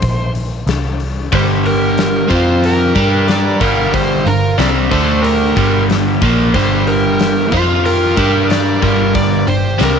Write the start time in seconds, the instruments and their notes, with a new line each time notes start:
Already playing: electric slide guitar C5
0.02 picked electric bass A#1, kick, open hi-hat
0.35 open hi-hat
0.67 picked electric bass C2, snare, open hi-hat
1.00 open hi-hat
1.32 picked electric bass G1, overdriven electric guitar G2 D3 G3, electric slide guitar C5, kick, open hi-hat
1.37 lead electric guitar G4
1.66 lead electric guitar G4, electric slide guitar A#4, open hi-hat
1.98 snare, open hi-hat
2.29 picked electric bass F2, overdriven electric guitar F3 C4 F4, electric slide guitar C5, kick, open hi-hat
2.35 lead electric guitar F4
2.64 electric slide guitar A#4, open hi-hat
2.68 lead electric guitar G4
2.95 picked electric bass G2, overdriven electric guitar G3 D4 G4, kick, open hi-hat
3.28 lead electric guitar A#4, electric slide guitar D5, snare, open hi-hat
3.60 picked electric bass G1, overdriven electric guitar G2 D3 G3, lead electric guitar F4, electric slide guitar A#4, kick, open hi-hat
3.93 lead electric guitar G4, electric slide guitar C5, kick, open hi-hat
4.25 picked electric bass G1, overdriven electric guitar G2 D3, lead electric guitar F4, electric slide guitar A#4, open hi-hat
4.58 picked electric bass C2, overdriven electric guitar C3 G3 C4, lead electric guitar A#4, electric slide guitar D5, snare, open hi-hat
4.91 picked electric bass D2, overdriven electric guitar D3 A3 D4, lead electric guitar A4, electric slide guitar C5, kick, open hi-hat
5.22 lead electric guitar G4, electric slide guitar A#4, open hi-hat
5.56 picked electric bass G1, overdriven electric guitar G2 D3 G3, kick, open hi-hat
5.90 snare, open hi-hat
6.22 picked electric bass A#1, overdriven electric guitar A#2 F3 A#3, kick, open hi-hat
6.54 picked electric bass G1, overdriven electric guitar G2 D3 G3, lead electric guitar G4, electric slide guitar C5, kick, open hi-hat
6.87 lead electric guitar G4, electric slide guitar A#4, open hi-hat
7.20 snare, open hi-hat
7.51 picked electric bass F2, overdriven electric guitar F3 C4 F4, lead electric guitar F4, electric slide guitar C5, kick, open hi-hat
7.85 lead electric guitar G4, electric slide guitar A#4, open hi-hat
8.16 picked electric bass G2, overdriven electric guitar G3 D4 G4, kick, open hi-hat
8.49 lead electric guitar A#4, electric slide guitar D5, snare, open hi-hat
8.81 picked electric bass G1, overdriven electric guitar G2 D3 G3, lead electric guitar F4, electric slide guitar A#4, kick, open hi-hat
9.15 lead electric guitar A#4, electric slide guitar D5, kick, open hi-hat
9.47 picked electric bass G1, overdriven electric guitar G2 D3, lead electric guitar G4, electric slide guitar C5, open hi-hat
9.78 picked electric bass C2, overdriven electric guitar C3 G3 C4, lead electric guitar G4, snare, open hi-hat
9.83 electric slide guitar A#4